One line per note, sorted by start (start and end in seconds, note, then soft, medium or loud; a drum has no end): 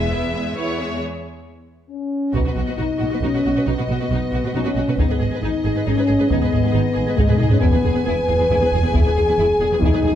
0.00 0.13 G#3 soft
0.00 0.13 B3 soft
0.00 0.98 B3 soft
0.00 0.13 G#4 soft
0.00 0.98 G#4 soft
0.00 0.13 E5 soft
0.00 0.56 E5 medium
0.12 0.51 E2 soft
0.12 0.35 B3 soft
0.12 0.35 E4 soft
0.12 0.35 B4 soft
0.33 0.58 G#3 soft
0.33 0.56 B3 soft
0.33 0.56 G#4 soft
0.33 0.57 E5 soft
0.56 0.96 E2 soft
0.56 0.78 B3 soft
0.56 0.78 E4 soft
0.56 0.78 B4 soft
0.56 1.00 C#5 medium
0.78 1.02 G#3 soft
0.78 1.02 B3 soft
0.78 1.01 G#4 soft
0.78 1.01 E5 soft
1.89 2.31 C#4 soft
2.33 2.39 B1 medium
2.33 2.39 B2 medium
2.33 2.79 B3 medium
2.33 2.40 D#4 medium
2.33 2.39 F#4 soft
2.33 4.95 D#5 soft
2.33 taiko soft
2.45 2.50 B2 soft
2.45 2.50 F#4 soft
2.45 2.51 B4 soft
2.56 2.61 B1 soft
2.56 2.62 B2 soft
2.56 2.61 F#4 soft
2.56 2.62 F#4 soft
2.67 2.72 B2 soft
2.67 2.72 F#4 soft
2.67 2.73 B4 soft
2.77 2.83 B1 soft
2.77 2.83 B2 medium
2.77 3.21 D#4 medium
2.77 2.83 D#4 medium
2.77 2.82 F#4 soft
2.99 3.05 B1 soft
2.99 3.06 B2 soft
2.99 3.04 F#4 soft
2.99 3.05 F#4 soft
3.10 3.17 B2 soft
3.10 3.15 F#4 soft
3.10 3.18 B4 soft
3.21 3.26 B1 soft
3.21 3.28 B2 soft
3.21 3.66 C#4 medium
3.21 3.27 D#4 soft
3.21 3.28 F#4 soft
3.34 3.39 B2 soft
3.34 3.39 F#4 soft
3.34 3.40 B4 soft
3.45 3.49 B1 soft
3.45 3.50 B2 soft
3.45 3.50 F#4 soft
3.56 3.61 B2 soft
3.56 3.61 F#4 soft
3.56 3.61 B4 soft
3.66 3.71 B1 soft
3.66 3.72 B2 medium
3.66 4.56 B3 medium
3.66 3.71 D#4 soft
3.66 3.72 F#4 soft
3.78 3.84 B2 soft
3.78 3.83 F#4 soft
3.78 3.83 B4 soft
3.88 3.93 B1 soft
3.88 3.94 B2 soft
3.88 3.95 F#4 soft
4.01 4.05 B2 soft
4.01 4.06 F#4 soft
4.01 4.05 B4 soft
4.10 4.15 B1 medium
4.10 4.16 B2 soft
4.10 4.18 D#4 medium
4.10 4.16 F#4 medium
4.32 4.37 B1 soft
4.32 4.38 B2 soft
4.32 4.38 F#4 soft
4.44 4.49 B2 soft
4.44 4.49 F#4 soft
4.44 4.50 B4 soft
4.54 4.59 B1 medium
4.54 4.60 B2 soft
4.54 4.99 C#4 medium
4.54 4.60 D#4 medium
4.54 4.60 F#4 medium
4.65 4.70 B2 soft
4.65 4.70 F#4 soft
4.65 4.70 B4 soft
4.75 4.80 B1 soft
4.75 4.81 B2 soft
4.75 4.81 F#4 soft
4.88 4.93 B2 soft
4.88 4.93 F#4 soft
4.88 4.93 B4 soft
4.96 5.02 G#1 medium
4.96 5.03 G#2 medium
4.96 5.42 B3 medium
4.96 5.04 D#4 soft
4.96 5.04 G#4 soft
4.96 7.59 D#5 soft
4.96 taiko medium
5.08 5.13 G#2 soft
5.08 5.15 G#4 soft
5.08 5.14 B4 soft
5.19 5.25 G#1 soft
5.19 5.24 G#2 soft
5.19 5.25 G#4 soft
5.30 5.35 G#2 soft
5.30 5.36 G#4 soft
5.30 5.38 B4 soft
5.41 5.47 G#1 medium
5.41 5.47 G#2 medium
5.41 5.86 D#4 medium
5.41 5.48 D#4 medium
5.41 5.48 G#4 medium
5.64 5.69 G#1 soft
5.64 5.69 G#2 soft
5.64 5.69 G#4 soft
5.64 5.70 G#4 soft
5.75 5.80 G#2 soft
5.75 5.80 G#4 soft
5.75 5.81 B4 soft
5.85 5.90 G#1 medium
5.85 5.91 G#2 medium
5.85 6.31 C#4 medium
5.85 5.91 D#4 medium
5.85 5.91 G#4 medium
5.96 6.02 G#2 soft
5.96 6.01 G#4 soft
5.96 6.03 B4 soft
6.07 6.13 G#1 soft
6.07 6.13 G#2 soft
6.07 6.12 G#4 soft
6.07 6.13 G#4 soft
6.19 6.25 G#2 soft
6.19 6.24 G#4 soft
6.19 6.24 B4 soft
6.29 6.34 G#1 medium
6.29 6.35 G#2 medium
6.29 7.18 B3 medium
6.29 6.37 D#4 medium
6.29 6.36 G#4 medium
6.29 taiko medium
6.41 6.46 G#2 soft
6.41 6.46 G#4 soft
6.41 6.48 B4 soft
6.51 6.57 G#1 soft
6.51 6.57 G#2 soft
6.51 6.56 G#4 soft
6.51 6.59 G#4 soft
6.63 6.69 G#2 soft
6.63 6.68 G#4 soft
6.63 6.70 B4 soft
6.72 6.78 G#1 medium
6.72 6.79 G#2 medium
6.72 6.79 D#4 medium
6.72 6.77 G#4 medium
6.94 7.01 G#1 soft
6.94 7.01 G#2 soft
6.94 6.99 G#4 soft
6.94 7.01 G#4 soft
7.06 7.12 G#2 soft
7.06 7.11 G#4 soft
7.06 7.13 B4 soft
7.17 7.22 G#1 medium
7.17 7.23 G#2 medium
7.17 7.40 G#3 medium
7.17 7.23 D#4 medium
7.17 7.22 G#4 medium
7.17 taiko medium
7.28 7.33 G#2 soft
7.28 7.33 G#4 medium
7.28 7.34 B4 medium
7.28 taiko low-mid medium
7.38 7.45 G#1 soft
7.38 7.45 G#2 soft
7.38 7.50 D#4 medium
7.38 7.43 G#4 soft
7.38 taiko low-mid medium
7.42 7.46 G#4 soft
7.49 7.56 G#2 soft
7.49 7.62 C#4 medium
7.49 7.54 G#4 soft
7.49 7.56 B4 medium
7.49 taiko low medium
7.60 7.66 E1 medium
7.60 7.67 E2 medium
7.60 8.05 B3 medium
7.60 7.66 E4 medium
7.60 7.65 G#4 medium
7.60 10.15 G#5 medium
7.60 taiko medium
7.72 7.78 E2 soft
7.72 7.77 G#4 soft
7.72 7.78 B4 soft
7.84 7.88 E1 soft
7.84 7.90 E2 soft
7.84 7.88 G#4 soft
7.84 7.90 G#4 soft
7.94 8.00 E2 soft
7.94 7.99 G#4 soft
7.94 8.00 B4 soft
8.05 8.11 E1 medium
8.05 8.11 E2 medium
8.05 8.12 E4 medium
8.05 8.10 G#4 medium
8.05 8.76 B4 medium
8.27 8.34 E1 soft
8.27 8.33 E2 soft
8.27 8.32 G#4 soft
8.27 8.34 G#4 soft
8.39 8.44 E2 soft
8.39 8.44 G#4 soft
8.39 8.45 B4 soft
8.50 8.56 E1 medium
8.50 8.55 E2 medium
8.50 8.55 E4 medium
8.50 8.55 G#4 medium
8.50 taiko medium
8.61 8.66 E2 soft
8.61 8.66 G#4 soft
8.61 8.68 B4 medium
8.72 8.77 E1 soft
8.72 8.77 E2 soft
8.72 8.77 G#4 soft
8.72 8.79 G#4 soft
8.82 8.88 E2 soft
8.82 8.87 G#4 medium
8.82 8.90 B4 medium
8.93 8.98 E1 medium
8.93 8.98 E2 medium
8.93 9.00 E4 medium
8.93 9.79 G#4 medium
8.93 8.98 G#4 medium
8.93 taiko medium
9.05 9.10 E2 soft
9.05 9.09 G#4 soft
9.05 9.11 B4 soft
9.16 9.20 E1 soft
9.16 9.22 E2 soft
9.16 9.21 G#4 soft
9.28 9.32 E2 soft
9.28 9.32 G#4 soft
9.28 9.32 B4 soft
9.38 9.42 E1 medium
9.38 9.43 E2 medium
9.38 9.43 E4 medium
9.38 9.43 G#4 medium
9.59 9.64 E1 soft
9.59 9.65 E2 soft
9.59 9.65 G#4 medium
9.59 9.67 G#4 soft
9.71 9.75 E2 soft
9.71 9.76 G#4 soft
9.71 9.77 B4 soft
9.81 9.86 E1 medium
9.81 9.85 E2 medium
9.81 10.15 D#4 medium
9.81 9.88 E4 medium
9.81 9.88 G#4 medium
9.81 taiko medium
9.92 9.97 E2 soft
9.92 9.98 G#4 soft
9.92 9.98 B4 medium
10.02 10.07 E1 soft
10.02 10.06 E2 soft
10.02 10.09 G#4 soft
10.07 10.11 G#4 soft